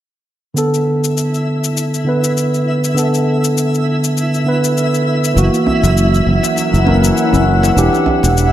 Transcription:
0.54 D3 B3 E4 A4 E5, shaker
0.74 shaker
1.04 shaker
1.17 shaker
1.34 shaker
1.64 shaker
1.77 shaker
1.94 shaker
2.04 D3 B3
2.09 B4
2.24 shaker
2.37 shaker
2.54 shaker
2.84 shaker
2.95 D3 B3, shaker
2.99 A4
3.14 shaker
3.44 shaker
3.57 shaker
3.74 shaker
4.04 shaker
4.17 shaker
4.34 shaker
4.44 D3 B3
4.48 B4
4.64 shaker
4.77 shaker
4.94 shaker
5.24 shaker
5.34 F#1 E3 F#3 A#3, shaker
5.38 F#4
5.54 shaker
5.66 djembe tone, djembe bass
5.82 F#1 F#5, djembe slap, shaker
5.97 shaker
6.05 C#4
6.14 shaker
6.22 E4
6.27 F#1 A#4, djembe tone
6.43 djembe slap, shaker
6.56 djembe slap, shaker
6.74 F#1, shaker
6.84 E3 A#3, djembe tone, djembe bass
6.88 A#4
7.04 shaker
7.17 shaker
7.33 F#1, djembe bass, shaker
7.46 djembe tone
7.63 djembe slap, shaker
7.74 E1 E3 D4 G4, shaker
7.93 djembe tone, shaker
8.06 djembe tone, djembe bass
8.23 E1, djembe slap, shaker
8.29 B3
8.37 shaker

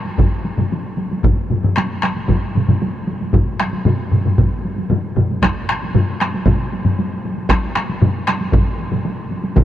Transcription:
0.05 taiko high
0.18 taiko, taiko low-mid, taiko mid, taiko high
0.45 taiko high
0.58 taiko low-mid, taiko mid, taiko high
0.72 taiko high
0.98 taiko high
1.11 taiko high
1.23 taiko, taiko low-mid, taiko mid, taiko high
1.50 taiko low-mid, taiko mid, taiko high
1.63 taiko low-mid, taiko mid, taiko high
1.76 taiko rim, taiko high
1.78 taiko rim
2.02 taiko rim, taiko high
2.04 taiko rim
2.16 taiko high
2.28 taiko, taiko low-mid, taiko mid, taiko high
2.55 taiko low-mid, taiko mid, taiko high
2.68 taiko low-mid, taiko mid, taiko high
2.82 taiko high
3.07 taiko high
3.21 taiko high
3.33 taiko, taiko low-mid, taiko mid, taiko high
3.60 taiko rim, taiko high
3.73 taiko high
3.85 taiko low-mid, taiko mid, taiko high
4.12 taiko low-mid, taiko mid, taiko high
4.25 taiko low-mid, taiko mid, taiko high
4.38 taiko, taiko low-mid, taiko mid, taiko high
4.65 taiko high
4.78 taiko high
4.90 taiko low-mid, taiko mid, taiko high
5.16 taiko low-mid, taiko mid, taiko high
5.31 taiko high
5.42 taiko rim, taiko, taiko high
5.69 taiko rim
5.83 taiko high
5.95 taiko low-mid, taiko mid, taiko high
6.20 taiko rim, taiko high
6.34 taiko high
6.46 taiko, taiko low-mid, taiko mid, taiko high
6.73 taiko high
6.85 taiko low-mid, taiko mid, taiko high
6.99 taiko high
7.25 taiko high
7.38 taiko high
7.49 taiko rim, taiko, taiko high
7.75 taiko rim, taiko high
7.89 taiko high
8.02 taiko low-mid, taiko mid, taiko high
8.27 taiko rim, taiko high
8.41 taiko high
8.53 taiko, taiko low-mid, taiko mid, taiko high
8.80 taiko high
8.91 taiko low-mid, taiko mid, taiko high
9.05 taiko high
9.31 taiko high
9.44 taiko high
9.56 taiko, taiko low-mid, taiko mid, taiko high

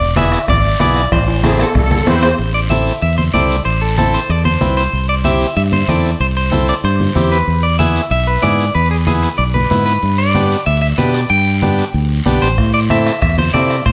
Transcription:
Already playing: E1 D5
0.16 B3 E4 G#4 E5, bombo rim, cowbell, high conga, short guiro
0.32 bombo rim, short guiro
0.48 G#1 D5, bombo low, bombo rim, cowbell, low conga, long guiro
0.80 B1 B3 E4 G#4 D5, bombo rim, cowbell, high conga, short guiro
0.96 bombo rim, short guiro
1.12 A1 C5, bombo low, bombo rim, cowbell, low conga, high timbale, long guiro
1.28 high timbale
1.43 C4 E4 G#4 A4, bombo rim, cowbell, high conga, short guiro
1.59 A4, bombo rim, low timbale, short guiro
1.75 C2 A4, bombo low, bombo rim, cowbell, low conga, low timbale, long guiro
1.83 A4
1.91 high conga, low timbale
2.07 E2 C4 E4 B4 C5, bombo rim, cowbell, high conga, low conga, low timbale, short guiro
2.23 C5, bombo rim, low timbale, short guiro
2.38 A1, long guiro
2.54 D5
2.70 C4 E4 A4 E5, high conga, short guiro
2.86 short guiro
3.02 E2 E5, long guiro
3.18 C5, high conga
3.34 C2 C4 E4 A4 D5, high conga, short guiro
3.50 short guiro
3.65 A1 C5, long guiro
3.82 A4
3.98 C4 E4 A4, high conga, short guiro
4.14 C5, short guiro
4.29 E2 D5, long guiro
4.45 C5, high conga
4.61 C2 C4 E4 B4, high conga, short guiro
4.77 C5, short guiro
4.93 C2, long guiro
5.09 D5
5.24 C4 E4 G4 E5, high conga, short guiro
5.41 short guiro
5.57 G2 E5, long guiro
5.72 C5, high conga
5.88 E2 C4 E4 A4 D5, high conga, short guiro
6.05 short guiro
6.20 C2 C5, long guiro
6.37 C5
6.51 C4 E4 A4, high conga, short guiro
6.68 D5, short guiro
6.84 G2 C5, long guiro
7.00 high conga
7.15 E2 C4 E4 G4, high conga, short guiro
7.32 B4, short guiro
7.48 E2, long guiro
7.63 D5
7.79 B3 E4 G#4 E5, high conga, short guiro
7.95 short guiro
8.11 B1 E5, long guiro
8.27 B4
8.42 G#2 B3 E4 G#4 D5, high conga, short guiro
8.59 short guiro
8.75 E2 B4, long guiro
8.91 G#4
9.06 B3 E4 G#4, high conga, short guiro
9.22 B4, short guiro
9.38 B1 D5, long guiro
9.54 B4, high conga
9.70 G#2 B3 E4 B4, high conga, short guiro
9.86 B4, short guiro
10.03 G2, long guiro
10.18 D5
10.34 B3 D4 G4, high conga, short guiro
10.51 short guiro
10.66 D2 E5, long guiro
10.82 E5
10.98 B2 B3 D4 G4 B4, high conga, short guiro
11.14 D5, short guiro
11.30 G2 G5, long guiro
11.62 B3 D4 G4, high conga, short guiro
11.78 short guiro
11.94 D2, long guiro
12.26 B1 B3 D4 G4, high conga, short guiro
12.42 A1 C5, short guiro
12.58 A2, bombo low, bombo rim, long guiro
12.74 D5
12.90 C4 E4 A4 E5, bombo rim, high conga, short guiro
13.06 bombo rim, short guiro
13.22 E2 E5, bombo low, bombo rim, long guiro
13.38 C5, high conga
13.54 C3 C4 E4 A4 D5, bombo rim, high conga, short guiro
13.70 bombo rim, short guiro
13.86 A2 C5, bombo low, bombo rim, long guiro

